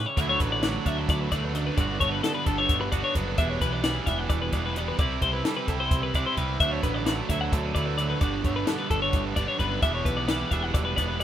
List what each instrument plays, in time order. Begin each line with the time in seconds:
Already playing: clean electric guitar C#3 E3 G3 E4
0.06 clean electric guitar C#5
0.17 picked electric bass D2, clean electric guitar D2 D3 F#3 E5, overdriven electric guitar D3 F#3 A3 D4, kick, closed hi-hat
0.21 clean electric guitar B3 E4
0.29 clean electric guitar C#5
0.40 picked electric bass A1, overdriven electric guitar F#3 A3 D4, clean electric guitar B3 B4, kick, closed hi-hat
0.52 clean electric guitar D5
0.62 overdriven electric guitar D3 F#3 A3 D4, clean electric guitar D3 F#3 D5, snare, closed hi-hat
0.85 picked electric bass D2, overdriven electric guitar F#3 A3 D4, clean electric guitar D4 E5, kick, closed hi-hat
0.97 clean electric guitar E4 F#5
1.09 picked electric bass D2, clean electric guitar D2 D5, kick, snare, closed hi-hat
1.21 clean electric guitar B4
1.30 picked electric bass D2, clean electric guitar E2 D5, overdriven electric guitar F#3 A3 D4, kick, snare, closed hi-hat
1.44 clean electric guitar B4
1.53 clean electric guitar F#2 D5, overdriven electric guitar D3 F#3 A3 D4, closed hi-hat
1.67 clean electric guitar B4
1.77 picked electric bass G1, overdriven electric guitar G2 D3 G3 B3 D4, clean electric guitar G2 D3 A3 F#4 D5, kick, closed hi-hat
2.00 picked electric bass G1, overdriven electric guitar G3 B3 D4, clean electric guitar A3 C#5, kick, closed hi-hat
2.12 clean electric guitar B4
2.23 overdriven electric guitar G2 D3 G3 B3 D4, clean electric guitar D3 A4, snare, closed hi-hat
2.35 clean electric guitar B4
2.46 picked electric bass G1, overdriven electric guitar G3 B3 D4, clean electric guitar A4, kick, closed hi-hat
2.58 clean electric guitar C#5
2.69 picked electric bass G1, clean electric guitar A3, kick, closed hi-hat
2.81 clean electric guitar B4
2.92 picked electric bass G1, clean electric guitar D3 F#4 D5, overdriven electric guitar G3 B3 D4, kick, closed hi-hat
3.04 clean electric guitar C#5
3.15 picked electric bass F#1, overdriven electric guitar D3 G3 B3 D4, clean electric guitar F#3 B4, kick, closed hi-hat
3.38 picked electric bass E1, clean electric guitar E2 D4 E5, overdriven electric guitar E3 G3 B3 E4, kick, closed hi-hat
3.49 clean electric guitar C#5
3.61 picked electric bass B1, overdriven electric guitar G3 B3 E4, clean electric guitar B3 B4, kick, closed hi-hat
3.73 clean electric guitar D5
3.84 overdriven electric guitar E3 G3 B3 E4, clean electric guitar E3 G3 D5, snare, closed hi-hat
4.06 picked electric bass E1, overdriven electric guitar G3 B3 E4, clean electric guitar D4 E5, kick, snare, closed hi-hat
4.18 clean electric guitar F#5
4.30 picked electric bass E1, clean electric guitar A3 D5, kick, closed hi-hat
4.42 clean electric guitar B3 B4
4.52 picked electric bass E1, clean electric guitar B2 D4 D5, overdriven electric guitar G3 B3 E4, kick, closed hi-hat
4.66 clean electric guitar B4
4.75 overdriven electric guitar E3 G3 B3 E4, clean electric guitar G3 D5, closed hi-hat
4.88 clean electric guitar B4
4.98 picked electric bass C2, overdriven electric guitar C3 G3 C4 E4, clean electric guitar C3 E4 D5, kick, closed hi-hat
5.21 picked electric bass C2, overdriven electric guitar G3 C4 E4, clean electric guitar C5, kick, closed hi-hat
5.33 clean electric guitar B4
5.44 overdriven electric guitar C3 G3 C4 E4, clean electric guitar E3 G3 A4, snare, closed hi-hat
5.57 clean electric guitar B4
5.67 picked electric bass C2, overdriven electric guitar G3 C4 E4, clean electric guitar E4 A4, kick, closed hi-hat
5.80 clean electric guitar C5
5.91 picked electric bass C2, kick, closed hi-hat
6.03 clean electric guitar B4
6.14 picked electric bass C2, clean electric guitar C3 D4 D5, overdriven electric guitar G3 C4 E4, kick, closed hi-hat
6.26 clean electric guitar E4 C5
6.37 picked electric bass C2, overdriven electric guitar C3 G3 C4 E4, clean electric guitar G3 B4, kick, closed hi-hat
6.59 clean electric guitar D2 D4 E5, picked electric bass D2, overdriven electric guitar D3 F#3 A3 D4, kick, closed hi-hat
6.72 clean electric guitar E4 C#5
6.82 picked electric bass A1, overdriven electric guitar F#3 A3 D4, clean electric guitar B3 B4, kick, closed hi-hat
6.94 clean electric guitar D5
7.05 overdriven electric guitar D3 F#3 A3 D4, clean electric guitar D3 F#3 D5, snare, closed hi-hat
7.29 picked electric bass D2, overdriven electric guitar F#3 A3 D4, clean electric guitar E4 E5, kick, snare, closed hi-hat
7.41 clean electric guitar F#5
7.52 picked electric bass D2, clean electric guitar A3 D5, kick, closed hi-hat
7.64 clean electric guitar B3 B4
7.75 picked electric bass D2, clean electric guitar A2 E4 D5, overdriven electric guitar F#3 A3 D4, kick, closed hi-hat
7.86 clean electric guitar B4
7.98 overdriven electric guitar D3 F#3 A3 D4, clean electric guitar D5, closed hi-hat
8.10 clean electric guitar B4
8.21 picked electric bass G1, overdriven electric guitar G2 D3 G3 B3 D4, clean electric guitar G2 F#4 D5, kick, closed hi-hat
8.44 picked electric bass G1, overdriven electric guitar G3 B3 D4, clean electric guitar A3 C#5, kick, closed hi-hat
8.56 clean electric guitar B4
8.67 overdriven electric guitar G2 D3 G3 B3 D4, clean electric guitar D3 A4, snare, closed hi-hat
8.79 clean electric guitar B4
8.90 picked electric bass G1, overdriven electric guitar G3 B3 D4, clean electric guitar A4, kick, closed hi-hat
9.02 clean electric guitar C#5
9.13 picked electric bass G1, clean electric guitar A2, kick, closed hi-hat
9.25 clean electric guitar B4
9.36 picked electric bass G1, clean electric guitar G2 D5, overdriven electric guitar G3 B3 D4, kick, closed hi-hat
9.48 clean electric guitar C#5
9.59 picked electric bass G1, clean electric guitar F#2 B4, overdriven electric guitar D3 G3 B3 D4, kick, closed hi-hat
9.81 picked electric bass E1, clean electric guitar E2 D4 E5, overdriven electric guitar E3 G3 B3 E4, kick, closed hi-hat
9.95 clean electric guitar C#5
10.04 picked electric bass B1, overdriven electric guitar G3 B3 E4, clean electric guitar A3 B4, kick, closed hi-hat
10.17 clean electric guitar B3 D5
10.27 overdriven electric guitar E3 G3 B3 E4, clean electric guitar E3 G3 D5, snare, closed hi-hat
10.50 picked electric bass E1, overdriven electric guitar G3 B3 E4, clean electric guitar D4 E5, kick, closed hi-hat
10.63 clean electric guitar F#5
10.73 picked electric bass E1, clean electric guitar A3 D5, kick, closed hi-hat
10.85 clean electric guitar B3 B4
10.96 picked electric bass E1, clean electric guitar B2 D4 D5, overdriven electric guitar G3 B3 E4, kick, snare, closed hi-hat
11.09 clean electric guitar B4
11.20 overdriven electric guitar E3, clean electric guitar D5, closed hi-hat